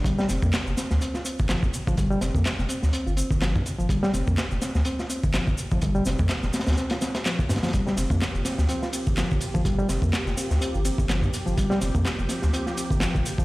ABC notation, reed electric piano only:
X:1
M:4/4
L:1/16
Q:"Swing 16ths" 1/4=125
K:Gm
V:1 name="Reed electric piano"
G, G, C B, z2 C z C F C z F, z2 F, | G, G, C B, z2 C z C F C z F, z2 F, | G, G, C B, z2 C z C F C z F, z2 F, | G, G, C B, z2 C z C F C z F, z2 F, |
G, G, C B, z2 C z C F C z F, z2 F, | G, G, C B, z2 C z C F C z F, z2 F, | G, G, C B, z2 C z C F C z F, z2 F, |]